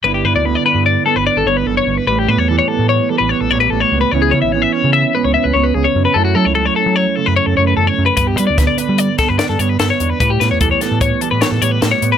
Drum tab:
HH |----------|----------|----------|----------|
SD |----------|----------|----------|----------|
BD |----------|----------|----------|----------|

HH |xxxxxxxxxx|xxxxxxxxxx|
SD |--o--oo-o-|-o-o--o-o-|
BD |o-o--o----|o-o-o-----|